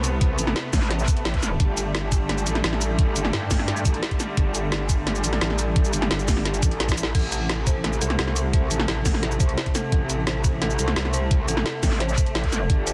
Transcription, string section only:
0, 0, Header, 1, 2, 480
1, 0, Start_track
1, 0, Key_signature, 0, "minor"
1, 0, Tempo, 346821
1, 293, Time_signature, 4, 2, 24, 8
1, 17899, End_track
2, 0, Start_track
2, 0, Title_t, "String section"
2, 0, Program_c, 0, 48
2, 0, Note_on_c, 0, 48, 83
2, 0, Note_on_c, 0, 57, 78
2, 0, Note_on_c, 0, 59, 92
2, 2158, Note_off_c, 0, 48, 0
2, 2158, Note_off_c, 0, 59, 0
2, 2212, Note_on_c, 0, 50, 83
2, 2212, Note_on_c, 0, 55, 76
2, 9837, Note_off_c, 0, 50, 0
2, 9837, Note_off_c, 0, 55, 0
2, 9838, Note_off_c, 0, 57, 0
2, 9892, Note_on_c, 0, 48, 85
2, 9892, Note_on_c, 0, 57, 76
2, 17517, Note_off_c, 0, 48, 0
2, 17574, Note_on_c, 0, 55, 76
2, 17575, Note_on_c, 0, 50, 86
2, 17899, Note_off_c, 0, 50, 0
2, 17899, Note_off_c, 0, 55, 0
2, 17899, Note_off_c, 0, 57, 0
2, 17899, End_track
0, 0, End_of_file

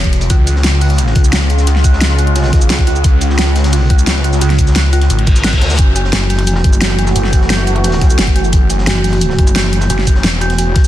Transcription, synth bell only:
0, 0, Header, 1, 2, 480
1, 0, Start_track
1, 0, Key_signature, 3, "minor"
1, 0, Tempo, 342857
1, 420, Time_signature, 4, 2, 24, 8
1, 15226, End_track
2, 0, Start_track
2, 0, Title_t, "Synth bell"
2, 0, Program_c, 0, 98
2, 420, Note_on_c, 0, 65, 99
2, 508, Note_off_c, 0, 65, 0
2, 900, Note_on_c, 0, 65, 78
2, 1119, Note_off_c, 0, 65, 0
2, 1140, Note_on_c, 0, 65, 101
2, 1228, Note_off_c, 0, 65, 0
2, 1620, Note_on_c, 0, 65, 77
2, 1839, Note_off_c, 0, 65, 0
2, 1860, Note_on_c, 0, 65, 98
2, 1948, Note_off_c, 0, 65, 0
2, 2341, Note_on_c, 0, 65, 83
2, 2559, Note_off_c, 0, 65, 0
2, 2581, Note_on_c, 0, 65, 98
2, 2668, Note_off_c, 0, 65, 0
2, 3061, Note_on_c, 0, 65, 76
2, 3280, Note_off_c, 0, 65, 0
2, 3300, Note_on_c, 0, 65, 99
2, 3388, Note_off_c, 0, 65, 0
2, 3780, Note_on_c, 0, 65, 76
2, 3999, Note_off_c, 0, 65, 0
2, 4020, Note_on_c, 0, 65, 103
2, 4108, Note_off_c, 0, 65, 0
2, 4500, Note_on_c, 0, 65, 74
2, 4719, Note_off_c, 0, 65, 0
2, 4741, Note_on_c, 0, 65, 103
2, 4828, Note_off_c, 0, 65, 0
2, 5220, Note_on_c, 0, 65, 82
2, 5439, Note_off_c, 0, 65, 0
2, 5461, Note_on_c, 0, 65, 103
2, 5548, Note_off_c, 0, 65, 0
2, 5940, Note_on_c, 0, 65, 78
2, 6159, Note_off_c, 0, 65, 0
2, 6181, Note_on_c, 0, 65, 98
2, 6268, Note_off_c, 0, 65, 0
2, 6661, Note_on_c, 0, 65, 77
2, 6880, Note_off_c, 0, 65, 0
2, 6900, Note_on_c, 0, 65, 106
2, 6988, Note_off_c, 0, 65, 0
2, 7380, Note_on_c, 0, 65, 78
2, 7599, Note_off_c, 0, 65, 0
2, 7620, Note_on_c, 0, 65, 98
2, 7708, Note_off_c, 0, 65, 0
2, 8101, Note_on_c, 0, 66, 100
2, 8188, Note_off_c, 0, 66, 0
2, 8340, Note_on_c, 0, 66, 99
2, 8486, Note_off_c, 0, 66, 0
2, 8580, Note_on_c, 0, 66, 78
2, 8799, Note_off_c, 0, 66, 0
2, 8821, Note_on_c, 0, 66, 102
2, 8908, Note_off_c, 0, 66, 0
2, 9061, Note_on_c, 0, 66, 98
2, 9207, Note_off_c, 0, 66, 0
2, 9300, Note_on_c, 0, 66, 76
2, 9519, Note_off_c, 0, 66, 0
2, 9539, Note_on_c, 0, 66, 100
2, 9627, Note_off_c, 0, 66, 0
2, 9781, Note_on_c, 0, 66, 103
2, 9926, Note_off_c, 0, 66, 0
2, 10020, Note_on_c, 0, 66, 82
2, 10239, Note_off_c, 0, 66, 0
2, 10259, Note_on_c, 0, 66, 96
2, 10348, Note_off_c, 0, 66, 0
2, 10500, Note_on_c, 0, 66, 99
2, 10646, Note_off_c, 0, 66, 0
2, 10740, Note_on_c, 0, 66, 77
2, 10959, Note_off_c, 0, 66, 0
2, 10981, Note_on_c, 0, 66, 97
2, 11068, Note_off_c, 0, 66, 0
2, 11219, Note_on_c, 0, 66, 102
2, 11366, Note_off_c, 0, 66, 0
2, 11459, Note_on_c, 0, 66, 76
2, 11679, Note_off_c, 0, 66, 0
2, 11700, Note_on_c, 0, 66, 105
2, 11788, Note_off_c, 0, 66, 0
2, 11939, Note_on_c, 0, 66, 98
2, 12086, Note_off_c, 0, 66, 0
2, 12179, Note_on_c, 0, 66, 75
2, 12399, Note_off_c, 0, 66, 0
2, 12419, Note_on_c, 0, 66, 106
2, 12507, Note_off_c, 0, 66, 0
2, 12659, Note_on_c, 0, 66, 105
2, 12806, Note_off_c, 0, 66, 0
2, 12899, Note_on_c, 0, 66, 80
2, 13119, Note_off_c, 0, 66, 0
2, 13139, Note_on_c, 0, 66, 102
2, 13227, Note_off_c, 0, 66, 0
2, 13379, Note_on_c, 0, 66, 97
2, 13526, Note_off_c, 0, 66, 0
2, 13619, Note_on_c, 0, 66, 76
2, 13838, Note_off_c, 0, 66, 0
2, 13859, Note_on_c, 0, 66, 99
2, 13947, Note_off_c, 0, 66, 0
2, 14100, Note_on_c, 0, 66, 96
2, 14246, Note_off_c, 0, 66, 0
2, 14340, Note_on_c, 0, 66, 74
2, 14559, Note_off_c, 0, 66, 0
2, 14580, Note_on_c, 0, 66, 106
2, 14668, Note_off_c, 0, 66, 0
2, 14819, Note_on_c, 0, 66, 96
2, 14966, Note_off_c, 0, 66, 0
2, 15060, Note_on_c, 0, 66, 78
2, 15148, Note_off_c, 0, 66, 0
2, 15226, End_track
0, 0, End_of_file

